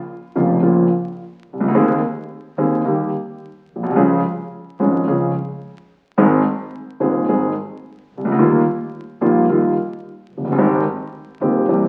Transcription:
0.35 F1 F2 C#3 F3 A#3 F4
0.62 A#1 A#2 C#3 F3 A#3 F4
1.47 C#2
1.53 C2
1.60 C#2
1.68 D2
1.74 D#2 D#3 G#3 C4 G#4
2.57 D#2 D#3 G#3 C4 G#4
2.85 D#2 D#3 G3 A#3 G4
3.70 B1
3.76 A#1
3.83 B1
3.90 C2
3.96 C#2 C#3 F3 G#3 C#4 G#4
4.80 G#1 G#2 F3 G#3 C#4 G#4
5.07 C#2 C#3 F3 G#3 C#4 G#4
6.18 G#1 G#2 D#3 G#3 C4 G#4
7.00 D#1 D#2 D#3 G#3 C4 G#4
7.28 G#1 G#2 D#3 G#3 C4 G#4
8.11 C#2
8.17 C2
8.25 C#2
8.32 D2
8.38 D#2 D#3 G3 A#3 F4
9.21 A#1 A#2 D#3 G3 A#3 F4
9.49 D#2 D#3 G3 A#3 F4
10.31 F#1
10.37 F1
10.45 F#1
10.52 G1
10.58 G#1 G#2 D#3 G#3 C4 G4
11.41 D#1 D#2 D#3 G#3 C4 G4
11.68 C2 C3 E3 A#3 C4 G4

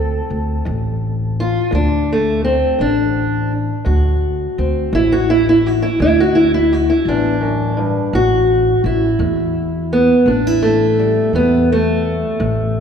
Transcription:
Already playing: D2 C4 A4
0.30 D2
0.65 A1 D2
1.40 F4
1.71 D2 D4
2.13 A3
2.45 C4
2.79 A1 D2 D4
3.85 D2 F#4
4.58 D2 C4
4.93 A1 D2 E4
5.12 F#4
5.30 E4
5.49 E4
5.66 F#4
5.82 E4
6.00 D2 E4
6.20 F#4
6.35 E4
6.54 E4
6.73 F#4
6.90 E4
7.05 A1 E2 D4
7.41 F#2
7.77 G2
8.13 A1 A2 F#4
8.84 A1 E4
9.19 E2 A2
9.93 B3
10.26 A1 A2 D4
10.47 E4
10.62 A3
10.99 G3
11.33 E2 A2 B3
11.72 A3
12.40 A1 A2

